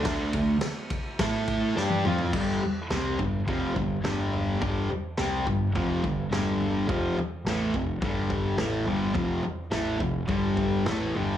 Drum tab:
CC |----------------|x---------------|----------------|----------------|
RD |x-x-x-x-x-x-----|----------------|----------------|----------------|
SD |o---o---o---o---|----o-------o---|----o-------o---|----o-------o---|
T1 |-------------o--|----------------|----------------|----------------|
T2 |--------------o-|----------------|----------------|----------------|
FT |---------------o|o-o-o-o-o-o-o-o-|o-o-o-o-o-o-o-o-|o-o-o-o-o-o-o-o-|
BD |o-o---o-o-o-----|o-----o-o-o-----|o-----o-o-o-----|o-----o-o-o-----|

CC |----------------|
RD |----------------|
SD |----o-------o---|
T1 |----------------|
T2 |----------------|
FT |o-o-o-o-o-o-o-o-|
BD |o-----o-o-o-----|